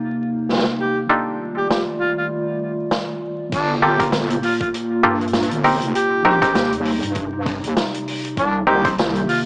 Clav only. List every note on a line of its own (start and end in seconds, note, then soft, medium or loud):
0.00 1.07 C4 medium
0.00 1.06 D#4 medium
0.00 1.07 G4 medium
0.00 1.06 A#4 medium
1.09 3.49 D4 medium
1.09 3.49 D#4 medium
1.09 3.49 F4 medium
1.09 3.49 G4 medium
1.09 3.49 A4 medium
3.82 3.97 A#3 medium
3.82 3.97 F4 medium
3.82 3.97 G4 medium
3.82 3.97 A4 medium
4.00 4.11 A#3 medium
4.00 4.11 F4 medium
4.00 4.11 G4 medium
4.00 4.11 A#4 medium
5.03 5.18 A#3 medium
5.03 5.19 F4 medium
5.03 5.18 G4 medium
5.03 5.18 A4 loud
5.64 6.22 C4 medium
5.64 6.22 D#4 medium
5.64 6.22 G4 medium
5.64 6.22 A#4 medium
6.25 6.40 C4 medium
6.25 6.40 D#4 medium
6.25 6.40 G4 medium
6.25 6.40 A#4 loud
6.42 6.53 C4 medium
6.42 6.53 D#4 medium
6.42 6.53 G4 medium
6.42 6.53 A#4 loud
8.67 8.82 C4 medium
8.67 8.82 D#4 medium
8.67 8.82 G4 medium
8.67 8.82 A#4 medium
8.85 8.96 C4 medium
8.85 8.96 D#4 medium
8.85 8.96 G4 medium
8.85 8.96 C5 medium